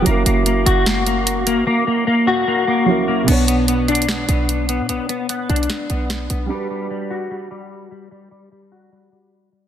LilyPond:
<<
  \new Staff \with { instrumentName = "Grand piano" } { \time 4/4 \key b \minor \tempo 4 = 149 <fis cis' e' ais'>1~ | <fis cis' e' ais'>2. <fis cis' e' ais'>4 | <b, b d' cis''>1~ | <b, b d' cis''>1 |
<g d' fis' b'>1~ | <g d' fis' b'>1 | }
  \new Staff \with { instrumentName = "Clean electric guitar" } { \time 4/4 \key b \minor ais8 ais8 ais8 fis'8 ais8 ais4 ais8 | ais8 ais8 ais8 fis'8 ais8 ais4 ais8 | b8 b8 b8 d'8 b8 b4 b8 | b8 b8 b8 d'8 b8 b4 b8 |
g8 g8 g8 fis'8 g8 g4 g8 | g8 g8 g8 fis'8 g8 g4 g8 | }
  \new Staff \with { instrumentName = "808-style bass" } { \clef bass \time 4/4 \key b \minor fis,,8 fis,,4 fis,,2~ fis,,8 | r1 | b,,2~ b,,8 b,,4~ b,,16 b,16 | b,,16 r4 r16 b,,8 r8 b,,4 b,,8 |
r1 | r1 | }
  \new DrumStaff \with { instrumentName = "Drums" } \drummode { \time 4/4 hh8 hh8 hh8 hh8 <hh sn>8 hh8 hh8 hh8 | r4 r4 r4 r4 | <cymc hh>8 hh8 \tuplet 3/2 { hh16 r16 r16 hh16 hh16 hh16 } <hh sn>8 hh8 hh8 hh8 | hh8 hh8 \tuplet 3/2 { hh16 r16 r16 hh16 hh16 hh16 } <hh sn>8 hh8 <hh sn>8 hh8 |
r4 r4 r4 r4 | r4 r4 r4 r4 | }
>>